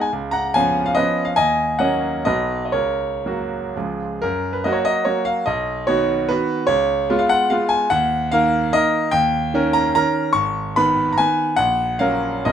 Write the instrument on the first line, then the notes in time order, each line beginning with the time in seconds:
grand piano
0.01 G#5
0.13 C#2
0.31 F#5 A#5
0.54 F3 B3 C#4 F5 G#5
0.86 F5
0.95 F3 B3 C#4 B4 D#5
1.25 F5
1.36 D#2 D#5 G#5
1.79 F#3 A#3 C#4 D#5 F#5
2.25 B1 F#3 B3 F#4 B4 D#5
2.65 D#5
2.72 C#2 A#4 C#5
3.26 F#3 A#3 F#4
3.76 C#2 F3 G#3 G#4
4.22 F#2 A#4
4.53 B4
4.64 F#3 A#3 F#4 D#5
4.73 C#5
4.85 D#5
5.05 F#3 A#3 F#4 C#5
5.25 F5
5.46 B1 D#5
5.87 D#3 B3 F#4 C#5
6.29 D#3 B3 F#4 B4
6.67 C#2 C#5
7.10 G#3 B3 F4
7.19 F5
7.29 F#5
7.50 G#3 B3 F4 F5
7.69 G#5
7.90 D#2 F#5
8.32 D#3 A#3 A#4 F5
8.73 D#3 A#3 A#4 D#5
9.11 D#2 G5
9.54 D#3 C#4 A#4
9.73 A#5
9.95 D#3 C#4 A#4 A#5
10.33 G#1 C#6
10.76 D#3 B3 B4 B5
11.13 A#5
11.18 D#3 B3 B4 G#5
11.56 A#1 F#5
11.99 F#3 C#4 A#4 F5
12.45 B1 F#3 B3 A#4 D#5